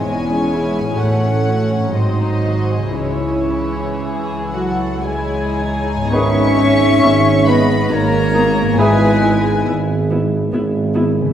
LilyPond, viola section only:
\new Staff \with { instrumentName = "Viola section" } { \time 3/4 \key cis \minor \tempo 4 = 64 << { cis'2 dis'4 | e'2. | \key gis \minor dis'8 dis'8 dis'8 dis'8 dis'8 dis'8 | e'8 e'8 e'8 e'8 e'8 e'8 | } \\ { gis4 a4 fis4 | e2. | b8 b8 b8 b8 b8 b8 | b8 b8 b8 b8 b8 b8 | } >> }